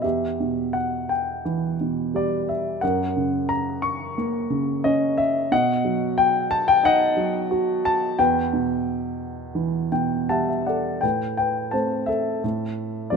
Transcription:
0.02 E2 G4 E5
0.40 B2
0.73 F#5
1.09 G5
1.45 E3
1.81 B2
2.14 G3 D5
2.49 E5
2.81 F#2 A#4 F#5
3.16 C#3
3.49 A#5
3.82 C#6
4.18 A#3
4.50 C#3
4.84 C#4 D#5
5.18 E5
5.52 B2 D#5 F#5
5.85 F#3
6.18 G5
6.51 A5
6.68 G5
6.83 D#4 D#5 F#5
7.17 F#3
7.51 F#4
7.85 A5
8.19 E2 B4 G5
8.53 B2
9.55 E3
9.92 B2 G5
10.29 G3 E5 F#5 A5
10.48 E5
10.66 A4 D5 F#5
11.01 A2 B4 G5
11.37 B4 G5
11.71 A3 C4 C5 A5
12.06 A4 E5
12.44 A2
13.10 F3 A3 C4 F4 D5

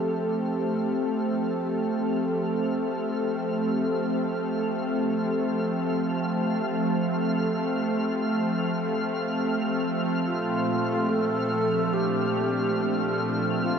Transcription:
Already playing: F3 A3 C4 G4 A4 F6
10.26 A#2 F4
11.09 A4
11.71 D4
11.93 G4
13.63 F4

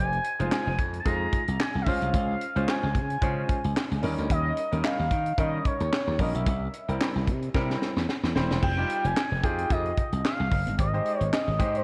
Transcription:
Already playing: F1 G4 C5
0.00 G#5
0.13 closed hi-hat
0.24 closed hi-hat
0.39 F1 G#3 D#4 F4 C5, closed hi-hat
0.52 G#5, snare, clap
0.67 F1
0.78 F2, kick, closed hi-hat
0.93 closed hi-hat
1.00 A5
1.05 F2 G#3 D#4 F4 G#4 A#5, kick, closed hi-hat
1.32 kick, closed hi-hat
1.48 C2, closed hi-hat
1.60 G#5, snare, clap
1.75 C2
1.82 E5
1.86 C#2 G#3 C#4 F4 C5 F5, kick, open hi-hat
2.02 C2, closed hi-hat
2.14 C#2 F5, kick, closed hi-hat
2.41 closed hi-hat
2.56 C#2 G#3 C#4 F4 C5, closed hi-hat
2.68 G#5, snare, clap
2.83 C#2
2.95 C#3, kick, closed hi-hat
3.10 closed hi-hat
3.21 C#3 G#3 C#4 F4 C5, kick, closed hi-hat
3.49 kick, closed hi-hat
3.64 C#2, closed hi-hat
3.77 snare, clap
3.91 C#2, closed hi-hat
4.02 D#2 G3 C#4 D#4 A#4, open hi-hat
4.18 D2, closed hi-hat
4.30 D#2 D#5, kick, closed hi-hat
4.57 closed hi-hat
4.72 D#2 G3 C#4 D#4 A#4, closed hi-hat
4.84 F5, snare, clap
5.00 D#2
5.11 D#3, kick, closed hi-hat
5.26 closed hi-hat
5.38 D#3 G3 C#4 D#4 A#4 D#5, kick, closed hi-hat
5.65 C#5, kick, closed hi-hat
5.80 D#2, closed hi-hat
5.93 snare, clap
6.08 D#2
6.19 A#1 G3 C#4 D#4 A#4 D#5, kick, open hi-hat
6.35 B1 E5, closed hi-hat
6.46 C2, kick, closed hi-hat
6.73 closed hi-hat
6.88 C2 G3 C4 E4 A#4, closed hi-hat
7.01 snare, clap
7.16 C2
7.27 C3, kick, closed hi-hat
7.42 closed hi-hat
7.54 C3 G3 C4 E4 A#4, kick, snare
7.70 snare
7.82 snare
7.96 E2, snare
8.09 snare
8.23 E2, snare
8.35 D#1 G3 C4 E4 C5, snare
8.50 E1, snare
8.62 F1 F4 G#4 G5, kick, crash
8.77 G3 D#4 F4 G4
8.89 closed hi-hat
9.04 F1 G#5, closed hi-hat
9.17 snare, clap
9.31 F1
9.43 F2 D#4 F4 G4 G#4 G5, kick, closed hi-hat
9.58 closed hi-hat
9.70 F2 D#5, kick, closed hi-hat
9.85 closed hi-hat
9.97 kick, closed hi-hat
10.12 C2, closed hi-hat
10.25 F5, snare, clap
10.40 C2
10.51 F#1, kick, open hi-hat
10.67 G1, closed hi-hat
10.78 G#1 G4 C5 D#5, kick, closed hi-hat
10.93 G#3 D#4 G4 C5, closed hi-hat
11.05 closed hi-hat
11.21 G#1, closed hi-hat
11.33 D#5, snare, clap
11.47 G#1
11.59 G#2 G#3 D#4 G4 C5, kick, closed hi-hat
11.75 C5, closed hi-hat

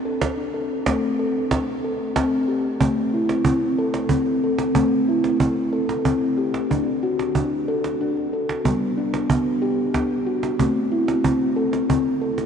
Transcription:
Already playing: D4
0.05 A4
0.21 cajon bass, cajon slap
0.38 D4
0.54 A4
0.86 A3 C4, cajon bass, cajon slap
1.18 A4, cajon slap
1.51 C4, cajon bass, cajon slap
1.84 A4
2.16 C4, cajon bass, cajon slap
2.48 G4
2.81 A3 C4, cajon bass
3.14 E4
3.29 cajon slap
3.45 C4, cajon bass
3.77 A4, cajon slap
3.94 cajon slap
4.09 C4, cajon bass
4.26 cajon slap
4.44 A4
4.58 cajon slap
4.75 A3 C4, cajon bass
5.09 E4
5.24 cajon slap
5.40 C4, cajon bass
5.73 A4, cajon slap
5.89 cajon slap
6.05 C4, cajon bass
6.22 cajon slap
6.38 G4
6.54 cajon slap
6.70 D4, cajon bass
7.03 F#4
7.19 cajon slap
7.35 D4, cajon bass
7.68 A4, cajon slap
7.84 cajon slap
8.01 D4
8.17 cajon slap
8.33 A4
8.49 cajon slap
8.65 G3 B3, cajon bass
8.97 D4
9.14 cajon slap
9.30 B3, cajon bass
9.62 G4
9.94 B3, cajon bass, cajon slap
10.11 cajon slap
10.26 F#4
10.43 cajon slap
10.59 A3 C4, cajon bass
10.92 E4
11.08 cajon slap
11.24 C4, cajon bass
11.56 A4, cajon slap
11.73 cajon slap
11.89 C4, cajon bass
12.06 cajon slap
12.21 A4
12.38 cajon slap

